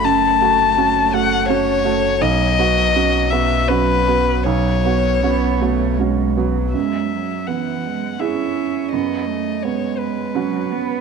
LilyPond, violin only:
\new Staff \with { instrumentName = "Violin" } { \time 3/4 \key b \mixolydian \tempo 4 = 83 a''4. fis''8 cis''4 | dis''4. e''8 b'4 | cis''2 r4 | e''4 fis''4 e''4 |
dis''4 cis''8 b'4. | }